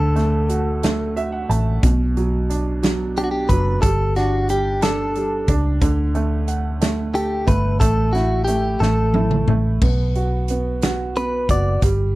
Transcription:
0.00 1.46 D2 loud
0.00 1.79 D3 medium
0.00 1.13 A4 medium
0.16 0.82 A3 medium
0.16 snare soft
0.16 closed hi-hat medium
0.49 1.15 F#4 soft
0.49 closed hi-hat medium
0.83 1.48 A3 medium
0.83 snare loud
0.83 closed hi-hat medium
1.16 1.81 F#4 soft
1.16 1.32 E5 medium
1.16 closed hi-hat medium
1.32 1.48 F#5 medium
1.49 1.81 A1 medium
1.49 1.82 A3 soft
1.49 1.81 A5 medium
1.49 closed hi-hat medium
1.83 3.46 B1 medium
1.83 3.79 B2 medium
1.83 kick loud
1.83 closed hi-hat loud
2.17 2.81 F#3 medium
2.17 closed hi-hat medium
2.50 3.16 D4 soft
2.50 closed hi-hat medium
2.83 3.49 F#3 medium
2.83 snare loud
2.83 closed hi-hat medium
3.17 3.82 D4 soft
3.17 3.23 G4 medium
3.17 closed hi-hat medium
3.24 3.31 F#4 medium
3.31 3.49 G4 medium
3.49 3.81 F#1 medium
3.49 3.82 F#3 medium
3.49 3.81 B4 medium
3.49 kick medium
3.49 closed hi-hat medium
3.82 5.45 G1 medium
3.82 4.48 G3 medium
3.82 4.13 A4 medium
3.82 kick loud
3.82 closed hi-hat medium
4.16 4.80 D4 medium
4.16 4.50 F#4 medium
4.16 snare soft
4.16 closed hi-hat soft
4.49 5.14 G3 medium
4.49 4.81 G4 medium
4.49 closed hi-hat medium
4.82 5.47 D4 medium
4.82 5.53 A4 medium
4.82 snare loud
4.82 closed hi-hat medium
5.15 5.80 G3 soft
5.15 closed hi-hat medium
5.48 5.80 C#2 medium
5.48 5.81 D4 medium
5.48 kick medium
5.48 closed hi-hat medium
5.81 7.44 D2 loud
5.81 7.77 D3 medium
5.81 kick loud
5.81 closed hi-hat medium
6.15 6.80 A3 medium
6.15 closed hi-hat medium
6.48 7.77 F#5 soft
6.48 closed hi-hat medium
6.81 7.45 A3 medium
6.81 snare loud
6.81 closed hi-hat medium
7.14 7.49 G4 medium
7.14 7.79 A4 soft
7.14 closed hi-hat medium
7.47 7.79 G1 medium
7.47 7.79 A3 medium
7.47 7.80 B4 medium
7.47 kick medium
7.47 closed hi-hat medium
7.80 8.77 A1 medium
7.80 8.46 A3 medium
7.80 8.11 A4 medium
7.80 kick loud
7.80 closed hi-hat loud
8.13 8.79 E4 soft
8.13 8.44 F#4 medium
8.13 snare soft
8.13 closed hi-hat medium
8.44 8.80 A3 soft
8.44 8.81 G4 medium
8.44 closed hi-hat medium
8.80 9.44 A1 medium
8.80 9.47 A3 medium
8.80 9.52 A4 medium
8.80 snare soft
9.14 9.80 E4 soft
9.14 high tom medium
9.31 mid tom medium
9.48 9.80 A1 medium
9.48 9.81 A3 medium
9.48 mid tom medium
9.81 11.45 B1 medium
9.81 10.49 B3 medium
9.81 kick loud
9.81 crash medium
10.15 10.82 F#4 medium
10.15 closed hi-hat soft
10.48 11.15 B3 medium
10.48 closed hi-hat medium
10.82 11.48 F#4 medium
10.82 snare loud
10.82 closed hi-hat medium
11.16 11.81 B3 medium
11.16 11.50 B4 medium
11.16 closed hi-hat medium
11.49 11.81 F#1 medium
11.49 11.82 F#4 medium
11.49 11.81 D5 medium
11.49 kick medium
11.49 closed hi-hat medium
11.82 12.15 G1 medium
11.82 12.15 G3 medium
11.82 kick loud
11.82 closed hi-hat medium

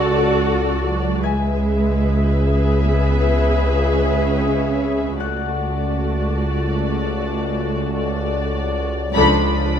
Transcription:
0.00 1.21 C#2 medium
0.00 1.22 C#2 medium
0.00 0.86 F#4 medium
0.00 1.22 F#4 medium
0.00 1.22 A4 medium
0.00 1.22 D5 medium
0.00 0.82 C#6 soft
0.00 0.83 E6 soft
0.87 1.25 F#3 medium
1.23 5.16 C#2 medium
1.23 5.16 C#2 soft
1.23 2.84 G#3 medium
1.23 5.16 G#4 medium
1.23 5.16 B4 medium
1.23 5.16 E5 medium
1.23 5.15 G#5 soft
1.23 5.13 G#6 soft
2.84 3.62 B3 medium
3.63 5.21 C#4 medium
5.20 9.11 C#2 medium
5.20 8.91 C#2 soft
5.20 8.75 A3 soft
5.20 8.91 F#4 soft
5.20 8.91 A4 soft
5.20 7.93 D5 soft
5.20 9.10 F#5 soft
5.20 9.10 F#6 soft
7.96 9.11 D5 soft
9.14 9.79 C#2 medium
9.14 9.79 F3 medium
9.14 9.79 D4 medium
9.14 9.79 A4 medium
9.14 9.79 D5 medium
9.14 9.79 B5 medium
9.14 9.79 D6 soft
9.14 9.79 D#6 soft

